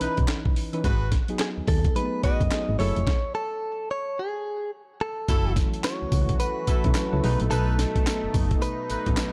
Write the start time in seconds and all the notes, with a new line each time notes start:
Already playing: B4
0.00 B1 E3 C#4 D#4 E4 B4, closed hi-hat
0.17 B1, kick, closed hi-hat
0.28 snare, clap, closed hi-hat
0.45 kick
0.56 open hi-hat
0.73 E3 C#4 D#4 B4, closed hi-hat
0.84 G#1 F#4 G#4 B4, kick, closed hi-hat
1.12 kick, snare, closed hi-hat
1.28 F#3 B3 D#4 G#4, closed hi-hat
1.39 G#4, snare, clap, closed hi-hat
1.58 D#2
1.68 D#2 A4, kick, open hi-hat
1.84 kick, closed hi-hat
1.95 F#3 A3 D#4 G#4 B4, closed hi-hat
2.02 B3
2.23 F#1 F#4 G#4 B4 D#5, kick, closed hi-hat
2.40 F#1, kick, closed hi-hat
2.51 F#3 B3 D#4 G#4, snare, clap, closed hi-hat
2.69 G#1
2.79 F#1 F#3 A3 E4 G#4 A4 C#5, open hi-hat
2.96 F1, closed hi-hat
3.07 kick, snare
3.35 A4
3.91 C#5
4.19 G#4
5.01 A4
5.28 F#1 E3 F#3 A3 C#4 E4 F#4 A4, kick, closed hi-hat, tambourine
5.56 kick, snare, closed hi-hat, tambourine
5.74 closed hi-hat
5.84 C#5, snare, clap, closed hi-hat, tambourine
6.02 C#2
6.12 C#2, kick, open hi-hat, tambourine
6.29 kick, closed hi-hat
6.40 B4, closed hi-hat, tambourine
6.67 B1 E4 F#4 A4, kick, closed hi-hat, tambourine
6.84 B1 F#3 C#4 E4 A4, kick, closed hi-hat
6.95 snare, clap, closed hi-hat, tambourine
7.12 C#2 F#3 C#4 E4 A4
7.22 B1 B2 F#3 B3 D#4 G#4 A4 B4, open hi-hat
7.30 A4
7.40 A#1, closed hi-hat
7.51 B1 D#4 A4 B4, closed hi-hat, tambourine
7.79 snare, closed hi-hat, tambourine
7.96 kick, closed hi-hat
8.07 snare, clap, closed hi-hat, tambourine
8.24 F#1
8.34 F#1, kick, open hi-hat, tambourine
8.51 kick, closed hi-hat
8.62 B4, closed hi-hat, tambourine
8.89 A1 D#4 A4 B4, closed hi-hat, tambourine
9.06 A1 F#3 B3 D#4 A4, kick, closed hi-hat
9.17 snare, clap, closed hi-hat, tambourine